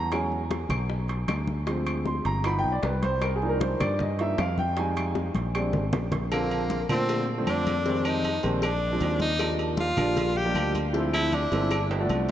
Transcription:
Already playing: E2 A#5
0.12 F#3 G#3 C#4 G#5, high bongo, high conga, high timbale, claves
0.32 high conga
0.51 high bongo, high conga, high timbale
0.69 B1, low conga, high timbale, claves
0.89 high bongo, high conga
1.08 high conga, high timbale
1.28 D2, high bongo, low bongo, high conga, high timbale, claves
1.47 high conga
1.67 F3 G#3 C4, high bongo, high conga, high timbale
1.86 high bongo, high conga, high timbale, claves
2.05 C6, high bongo, high conga
2.25 G1 A#5, high conga, high timbale
2.44 F3 B3 D#4 B5, high bongo, high conga, high timbale, claves
2.59 G5
2.64 B1, high bongo, high conga
2.72 D5
2.83 C2 B4, high bongo, low bongo, high conga, high timbale, low timbale
3.02 C5, high bongo, high conga, high timbale
3.22 A#4, high bongo, high conga, high timbale, claves
3.36 G#4
3.42 F3 A#3 D4 D#4, high conga
3.49 A#4
3.60 C5, high bongo, high conga, high timbale
3.80 G2 D5, low conga, high timbale, claves
3.99 D#5, high bongo, high conga, low conga
4.19 F3 A#3 D4 D#4 E5, high conga, high timbale
4.38 F2 F5, high bongo, low bongo, high conga, high timbale, low timbale, claves
4.58 G5, high conga
4.77 G3 G#3 D#4 G#5, high bongo, high conga, high timbale
4.96 high bongo, high conga, high timbale, claves
5.15 high bongo, high conga
5.35 A#1, high conga, high timbale
5.55 G3 G#3 C4 D4, high timbale, claves
5.73 G#1, low bongo, low conga
5.93 A#1, low bongo, low conga, high timbale, low timbale
6.12 low bongo, low conga, high timbale
6.31 D3 F3 A#3 C4 A4, cowbell, high conga, low agogo, claves
6.50 high conga, low agogo
6.70 cowbell, high conga
6.89 A#2 D3 F3 A3 C4, cowbell, low conga, low agogo, claves
7.09 cowbell, high conga, low agogo
7.28 high conga
7.38 D3 F3 A3 C4
7.47 F2 D4, cowbell, high conga, low agogo, claves
7.67 cowbell, high conga, low agogo
7.85 D#3 G3 G#3 C4, cowbell, high conga
8.05 D#4, high conga, low agogo, claves
8.24 cowbell, high conga, low agogo
8.43 A#1 D#3 G3 G#3 C4, cowbell, high conga, low agogo
8.62 D4, cowbell, high conga, low agogo, claves
8.82 high conga
8.92 F3 G#3 C4 D4
9.00 D#2, cowbell, high conga, low timbale, low agogo
9.20 D#4, cowbell, high conga
9.39 F3 G3 A#3 D4, cowbell, high conga, low agogo, claves
9.59 high conga, low agogo
9.77 F4, cowbell, high conga
9.97 A#1 F3 G3 A#3 D4, cowbell, low conga, low agogo, claves
10.16 cowbell, high conga, low conga, low agogo
10.36 G4, high conga
10.45 F3 G3 A#3 D4
10.55 D2, cowbell, high conga, low agogo, claves
10.75 cowbell, high conga, low agogo
10.93 F3 G#3 C4 E4, cowbell, high conga
11.13 E4, high conga, low agogo, claves
11.32 D4, cowbell, high conga, low agogo
11.51 G1 F3 G#3 C4 E4, cowbell, high conga, high timbale, low agogo
11.71 cowbell, high conga, low agogo, claves
11.91 high conga, low timbale
12.00 F3 A3 B3 D4
12.10 C2, cowbell, high conga, low agogo

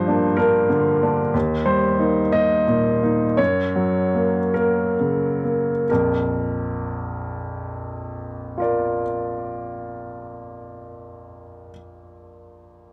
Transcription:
Already playing: G2 F3 C5
0.08 A#3 D4
0.37 A#3 D4 A#4
0.69 D3
1.03 A#3 D4
1.34 D#2
1.66 G3 C5
1.99 A#3 D#4
2.32 A#3 D#4 D#5
2.67 A#2
3.03 A#3 D#4
3.37 F#2 C#5
3.76 F#3
4.15 A#3
4.54 A#3 A#4
5.00 C#3
5.44 A#3
5.90 A#1 F2 A#4
8.58 F4 A#4
8.62 D5

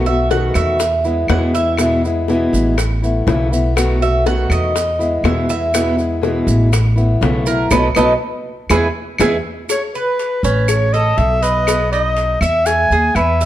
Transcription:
Already playing: B1
0.06 A3 B3 F#4 E5, high bongo, maracas
0.30 B2 D#3 A3 B3 F#4 F#5, high bongo, maracas
0.54 E2 E5, high bongo, claves, maracas
0.80 muted steel-string acoustic guitar stroke, high bongo, maracas
1.04 G#3 B3 E4, maracas
1.28 E2 B2 E3 G#3 B3 E4 F#5, high bongo, low bongo, claves, maracas
1.54 G#3 B3 E4 E5, high bongo, maracas
1.77 B2 E3 G#3 B3 E4, high bongo, claves, maracas
2.04 G#3 B3 E4, maracas
2.28 B2 E3 G#3 B3 E4, high bongo, maracas
2.53 A1, maracas
2.77 muted steel-string acoustic guitar stroke, high bongo, claves, maracas
3.02 A3 B3 E4, maracas
3.27 B1 C#3 E3 A3 B3 E4, high bongo, low bongo, maracas
3.51 A3 B3 E4, maracas
3.75 B2 D#3 A3 B3 F#4, high bongo, claves, maracas
4.01 A3 B3 F#4 E5, high bongo, maracas
4.26 B2 D#3 A3 B3 F#4 F#5, high bongo, maracas
4.50 E2 D#5, high bongo, claves, maracas
4.75 muted steel-string acoustic guitar stroke, high bongo, maracas
4.99 G#3 B3 E4, maracas
5.24 E2 B2 E3 G#3 B3 E4 E5, high bongo, low bongo, claves, maracas
5.48 G#3 B3 E4 E5, high bongo, maracas
5.74 B2 E3 G#3 B3 E4, high bongo, claves, maracas
5.97 G#3 B3 E4, maracas
6.22 B2 E3 G#3 B3 E4, high bongo, maracas
6.47 A1, maracas
6.72 muted steel-string acoustic guitar stroke, high bongo, claves, maracas
6.96 A3 B3 E4, maracas
7.21 B1 C#3 E3 A3 B3 E4, high bongo, low bongo, maracas
7.46 A3 B3 E4 A#4, maracas
7.71 B1 F#3 A3 B3 A4 B4 D#5, low bongo, claves, maracas
7.95 B1 F#3 A3 B3 A4 B4 D#5, low bongo, claves, maracas
8.70 E2 E3 G#3 B3 G#4 B4 E5, low bongo, claves, maracas
9.18 E2 E3 G#3 B3 G#4 B4 E5, low bongo, claves, maracas
9.69 C#5, cowbell, claves, maracas
9.95 B4, maracas
10.19 cowbell, maracas
10.43 A1 C#4 B4, maracas
10.68 C#5, cowbell, claves, maracas
10.93 A4 D#5, maracas
11.17 B1 E5, cowbell, maracas
11.43 B4 D#5, cowbell, maracas
11.67 B3, cowbell, claves, maracas
11.92 D#4 D#5, maracas
12.17 cowbell, maracas
12.41 E2 E5, claves, maracas
12.66 G#5, cowbell, maracas
12.90 D#2 G#4, maracas
13.15 E2 B4 E5, cowbell, claves, maracas
13.41 E5, maracas

